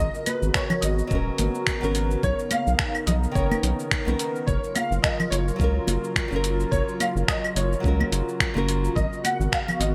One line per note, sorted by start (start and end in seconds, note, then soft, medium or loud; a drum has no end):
0.00 4.44 C#3 medium
0.00 4.44 B3 medium
0.00 2.21 F#4 loud
0.00 8.92 A#4 medium
0.00 0.27 D#5 loud
0.15 shaker soft
0.26 0.55 B4 medium
0.26 closed hi-hat medium
0.26 high conga medium
0.26 claves medium
0.26 shaker medium
0.42 0.50 G#1 loud
0.42 shaker soft
0.54 0.80 C#5 medium
0.54 finger snap medium
0.54 kick loud
0.54 shaker soft
0.70 low conga medium
0.70 claves medium
0.70 shaker soft
0.81 1.02 G#1 medium
0.81 1.90 D#5 medium
0.81 closed hi-hat medium
0.81 shaker medium
0.99 shaker soft
1.07 1.30 D#1 medium
1.07 1.77 F#3 medium
1.07 1.79 B3 medium
1.07 kick loud
1.07 shaker soft
1.12 1.80 C#4 medium
1.12 1.81 A#4 medium
1.38 1.49 G#1 loud
1.38 closed hi-hat medium
1.38 high conga medium
1.38 shaker medium
1.55 shaker soft
1.67 finger snap medium
1.67 kick loud
1.67 shaker soft
1.81 2.16 G#1 medium
1.81 2.21 F#3 medium
1.81 2.21 B3 medium
1.81 2.22 C#4 medium
1.81 2.22 A#4 medium
1.81 shaker soft
1.95 closed hi-hat medium
1.95 shaker medium
2.11 shaker soft
2.23 2.34 B1 medium
2.23 4.46 D#4 medium
2.23 2.52 C#5 medium
2.23 kick medium
2.23 shaker soft
2.39 shaker soft
2.51 3.04 F5 loud
2.51 closed hi-hat medium
2.51 high conga medium
2.51 claves medium
2.51 shaker medium
2.67 2.75 B1 medium
2.67 shaker soft
2.79 finger snap medium
2.79 kick medium
2.79 shaker soft
2.95 claves medium
2.95 shaker soft
3.06 3.27 B1 medium
3.06 3.13 D#5 medium
3.06 closed hi-hat medium
3.06 low conga medium
3.06 shaker medium
3.23 shaker soft
3.32 3.55 F#1 medium
3.32 4.02 D#3 medium
3.32 4.03 B3 medium
3.32 3.87 C#5 medium
3.32 kick loud
3.36 4.04 C#4 medium
3.36 4.05 A#4 medium
3.36 shaker soft
3.51 high conga medium
3.51 claves medium
3.51 shaker soft
3.63 3.74 B1 loud
3.63 closed hi-hat medium
3.63 shaker medium
3.79 shaker soft
3.91 finger snap medium
3.91 kick loud
3.91 shaker soft
4.05 4.15 B1 medium
4.05 4.45 D#3 medium
4.05 4.46 B3 medium
4.05 4.46 C#4 medium
4.05 4.47 A#4 medium
4.05 high conga medium
4.05 shaker soft
4.19 closed hi-hat medium
4.19 shaker medium
4.36 shaker soft
4.47 4.58 F#1 medium
4.47 9.95 C#3 medium
4.47 8.92 F#3 medium
4.47 8.92 F4 medium
4.47 4.73 C#5 medium
4.47 kick medium
4.47 shaker soft
4.64 shaker soft
4.75 5.04 F5 medium
4.75 closed hi-hat medium
4.75 high conga medium
4.75 claves medium
4.75 shaker medium
4.91 4.99 F#1 medium
4.91 shaker soft
5.02 5.32 D#5 medium
5.02 finger snap medium
5.02 kick loud
5.02 shaker soft
5.20 low conga medium
5.20 claves medium
5.20 shaker soft
5.30 5.51 F#1 medium
5.30 6.39 C#5 medium
5.30 closed hi-hat medium
5.30 shaker medium
5.48 shaker soft
5.56 5.79 C#2 medium
5.56 6.26 F#3 medium
5.56 6.27 C#4 medium
5.56 kick loud
5.60 6.28 F4 medium
5.60 6.30 A#4 medium
5.60 shaker soft
5.87 5.98 F#1 medium
5.87 closed hi-hat medium
5.87 high conga medium
5.87 shaker medium
6.04 shaker soft
6.16 finger snap medium
6.16 kick loud
6.16 shaker soft
6.28 6.65 F#1 medium
6.28 7.79 F#3 medium
6.28 7.81 C#4 medium
6.28 shaker soft
6.33 7.82 F4 medium
6.33 7.83 A#4 loud
6.44 closed hi-hat medium
6.44 shaker medium
6.60 shaker soft
6.71 6.82 F#1 medium
6.71 7.01 C#5 medium
6.71 kick medium
6.71 shaker soft
6.89 shaker soft
7.00 7.06 F5 medium
7.00 closed hi-hat medium
7.00 high conga medium
7.00 claves medium
7.00 shaker medium
7.16 7.24 F#1 loud
7.16 shaker soft
7.28 7.57 D#5 medium
7.28 finger snap medium
7.28 kick medium
7.28 shaker soft
7.44 claves medium
7.44 shaker soft
7.56 7.75 F#1 medium
7.56 8.64 C#5 medium
7.56 closed hi-hat medium
7.56 shaker medium
7.73 shaker soft
7.80 8.04 C#2 medium
7.80 8.50 F#3 medium
7.80 8.52 C#4 medium
7.84 8.53 F4 medium
7.84 8.54 A#4 medium
7.84 kick loud
7.84 shaker soft
8.00 high conga medium
8.00 claves medium
8.12 8.22 F#1 loud
8.12 closed hi-hat medium
8.12 shaker medium
8.29 shaker soft
8.40 finger snap medium
8.40 kick medium
8.40 shaker soft
8.54 8.89 F#1 medium
8.54 8.94 F#3 medium
8.54 8.94 C#4 medium
8.54 8.95 F4 medium
8.54 8.96 A#4 loud
8.54 high conga medium
8.54 shaker soft
8.69 closed hi-hat medium
8.69 shaker medium
8.85 shaker soft
8.95 9.06 G#1 medium
8.95 9.95 B3 medium
8.95 9.95 F#4 medium
8.95 9.95 A#4 medium
8.95 9.22 D#5 medium
8.95 kick medium
8.95 shaker soft
9.13 shaker soft
9.24 9.53 F#5 medium
9.24 closed hi-hat medium
9.24 high conga medium
9.24 claves medium
9.24 shaker medium
9.40 9.48 G#1 medium
9.40 shaker soft
9.52 9.81 F5 medium
9.52 finger snap medium
9.52 kick medium
9.52 shaker soft
9.68 low conga medium
9.68 claves medium
9.68 shaker soft
9.80 9.95 G#1 medium
9.80 9.86 D#5 medium
9.80 closed hi-hat medium
9.80 shaker medium